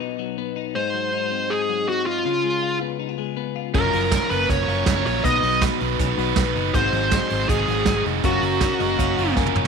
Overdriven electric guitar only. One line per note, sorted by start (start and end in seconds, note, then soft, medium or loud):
3.74 3.91 F#3 medium
3.74 3.92 C#4 medium
3.74 3.93 F4 medium
3.74 3.94 A#4 medium
3.92 4.29 F#3 medium
3.92 4.30 C#4 medium
3.92 4.30 F4 medium
3.92 4.31 A#4 medium
4.30 4.66 F#3 medium
4.30 4.67 C#4 medium
4.30 4.68 F4 medium
4.30 4.69 A#4 medium
4.67 4.96 F#3 medium
4.67 4.96 C#4 medium
4.67 4.96 F4 medium
4.67 4.95 A#4 medium
4.96 5.24 F#3 medium
4.96 5.25 C#4 medium
4.96 5.25 F4 medium
4.96 5.24 A#4 medium
5.24 5.43 B2 medium
5.24 5.43 D#3 medium
5.24 5.41 F#3 medium
5.24 5.42 B3 medium
5.24 5.43 D#4 medium
5.24 5.44 B4 loud
5.42 5.80 F#3 medium
5.42 5.80 B3 medium
5.42 5.81 D#4 medium
5.42 5.81 B4 medium
5.80 6.18 B2 medium
5.80 6.47 D#3 medium
5.80 6.16 F#3 loud
5.80 6.17 B3 medium
5.80 6.19 D#4 medium
5.80 6.19 B4 loud
6.17 6.45 F#3 medium
6.17 6.46 B3 medium
6.17 6.45 D#4 medium
6.17 6.44 B4 medium
6.45 6.74 B2 medium
6.45 6.74 D#3 medium
6.45 6.74 F#3 medium
6.45 6.75 B3 medium
6.45 6.74 D#4 medium
6.45 6.74 B4 medium
6.74 6.93 G#2 medium
6.74 6.93 D#3 medium
6.74 6.91 F#3 medium
6.74 6.92 C4 loud
6.74 6.93 F#4 medium
6.74 6.94 G#4 medium
6.92 7.30 F#3 medium
6.92 7.30 C4 medium
6.92 7.31 F#4 medium
6.92 7.31 G#4 medium
7.29 7.67 G#2 medium
7.29 7.68 D#3 medium
7.29 7.67 F#3 loud
7.29 7.67 C4 medium
7.29 7.69 F#4 loud
7.29 7.69 G#4 loud
7.67 7.96 F#3 medium
7.67 7.95 C4 medium
7.67 7.95 F#4 medium
7.67 7.94 G#4 medium
7.96 8.25 G#2 medium
7.96 8.25 D#3 medium
7.96 8.22 F#3 medium
7.96 8.24 C4 medium
7.96 8.24 F#4 medium
7.96 8.24 G#4 medium
8.23 8.40 F#3 medium
8.23 8.41 C#4 medium
8.23 8.43 F4 medium
8.23 8.44 A#4 medium
8.41 8.79 F#3 medium
8.41 8.80 C#4 medium
8.41 8.81 A#4 medium
8.79 9.16 F#3 medium
8.79 9.17 C#4 loud
8.79 9.19 A#4 medium
9.17 9.46 F#3 medium
9.17 9.46 C#4 medium
9.17 9.45 F4 medium
9.17 9.44 A#4 medium
9.46 9.67 F#3 medium
9.46 9.67 C#4 medium
9.46 9.67 F4 medium
9.46 9.67 A#4 medium